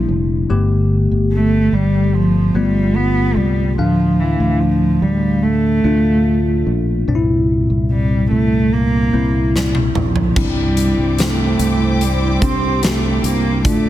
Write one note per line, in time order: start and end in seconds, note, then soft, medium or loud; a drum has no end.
0.00 0.44 A#3 medium
0.00 0.44 D4 medium
0.00 0.44 E4 medium
0.09 0.47 F1 medium
0.50 1.08 G1 medium
0.50 1.69 G2 medium
0.50 1.69 D3 medium
0.50 2.06 A3 medium
0.50 2.06 B3 medium
0.50 2.06 G4 medium
1.12 1.69 G1 medium
1.33 1.76 A3 medium
1.73 2.51 G1 medium
1.73 2.17 G3 medium
2.15 2.57 F3 medium
2.54 3.33 G1 medium
2.54 2.98 G3 medium
2.54 3.72 A3 medium
2.54 3.73 B3 medium
2.54 3.73 F4 medium
2.96 3.38 B3 medium
3.36 3.75 C2 medium
3.36 3.77 G3 medium
3.77 4.36 D2 medium
3.77 4.98 A2 medium
3.77 4.21 F3 medium
3.77 5.35 A3 medium
3.77 5.35 D4 medium
3.77 5.35 F5 medium
4.20 4.61 E3 medium
4.40 4.98 D2 medium
4.60 5.03 F3 medium
5.02 5.80 D2 medium
5.02 5.44 G3 medium
5.43 6.66 A3 medium
5.84 6.62 D2 medium
5.84 7.01 A3 medium
5.84 7.02 D4 medium
5.84 7.02 F4 medium
6.67 7.05 A#1 medium
7.08 7.65 C2 medium
7.08 8.27 G2 medium
7.08 8.64 A#2 medium
7.08 8.64 C4 medium
7.08 7.15 D4 medium
7.15 8.67 E4 medium
7.70 8.27 C2 medium
7.91 8.29 G3 medium
8.31 9.09 C2 medium
8.31 8.74 A3 medium
8.73 9.55 A#3 medium
9.13 9.91 C2 medium
9.13 10.30 A#3 medium
9.13 10.31 C4 soft
9.13 10.31 E4 medium
9.56 9.74 G3 medium
9.56 snare soft
9.75 high tom medium
9.95 10.34 A#1 medium
9.95 10.40 F3 medium
9.95 mid tom medium
10.16 floor tom medium
10.36 10.94 C2 medium
10.36 11.56 G2 medium
10.36 11.22 G3 medium
10.36 11.92 C4 medium
10.36 11.93 D4 medium
10.36 13.62 E4 medium
10.36 11.93 E4 medium
10.36 13.62 C5 medium
10.36 13.62 G5 medium
10.36 13.62 D6 medium
10.36 kick loud
10.36 crash medium
10.77 closed hi-hat medium
10.98 11.56 C2 medium
11.19 12.04 A3 medium
11.19 snare medium
11.19 closed hi-hat medium
11.59 12.38 C2 medium
11.59 closed hi-hat medium
12.01 12.45 G3 medium
12.01 closed hi-hat medium
12.42 13.20 C2 medium
12.42 13.59 C4 medium
12.42 12.85 C4 medium
12.42 13.59 D4 medium
12.42 13.59 G4 medium
12.42 kick medium
12.42 closed hi-hat medium
12.83 13.27 A3 medium
12.83 snare medium
12.83 closed hi-hat medium
13.23 13.62 C2 medium
13.23 13.66 A#3 medium
13.23 closed hi-hat medium
13.64 13.89 D2 medium
13.64 13.89 A2 medium
13.64 13.89 A3 medium
13.64 13.89 D4 medium
13.64 13.89 F4 medium
13.64 13.89 D5 medium
13.64 13.89 A5 medium
13.64 13.89 D6 medium
13.64 kick loud
13.64 closed hi-hat medium